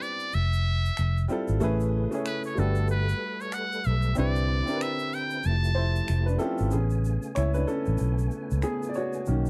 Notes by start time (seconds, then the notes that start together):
Already playing: G3 C4 D4 E4 B4
0.02 D5, shaker
0.20 shaker
0.33 F1 E5, shaker
0.53 shaker
0.85 shaker
0.97 F1, finger snap, shaker
1.17 shaker
1.28 G3 C4 E4 F4 A4, shaker
1.48 G#1, shaker
1.60 A1 C#3 A3 C#4 E4 G#4 B4, shaker
1.80 shaker
2.11 A3 C#4 E4 G#4 C#5, shaker
2.26 B4, finger snap, shaker
2.44 C#5, shaker
2.55 G1 G3 A3 D4 F#4 G4 A4, shaker
2.59 B4
2.75 shaker
2.88 B4, shaker
3.09 shaker
3.41 C#5, shaker
3.52 F#5, finger snap, shaker
3.72 shaker
3.84 B1 E5, shaker
4.02 shaker
4.15 C2 D3 C4 D4 E4 G4 B4 D5, shaker
4.36 shaker
4.66 C4 D4 E4 G4 A#4, shaker
4.76 B4
4.81 E5, finger snap, shaker
4.99 shaker
5.13 G5, shaker
5.30 shaker
5.43 F1 F3 A3 E4 G4 A5, shaker
5.64 shaker
5.75 E4 C5
5.96 shaker
6.08 F1, finger snap, shaker
6.26 D4 B4, shaker
6.38 C4 C#4 E4 F4 G4 A4, shaker
6.58 G#1, shaker
6.71 A1 C#3 A3 B3 C#4 G#4 G#5, shaker
6.90 shaker
7.05 shaker
7.22 shaker
7.35 C#2 E4 C#5, finger snap, shaker
7.54 D4 B4, shaker
7.67 C#4 A4, shaker
7.86 A1, shaker
7.98 B1, shaker
8.19 shaker
8.31 shaker
8.51 C#2, shaker
8.62 B3 G#4, finger snap, shaker
8.83 shaker
8.89 D5
8.94 F#4 C#5, shaker
9.13 shaker
9.26 B1 B2 D#3 A#3 C#4 D#4, shaker
9.46 shaker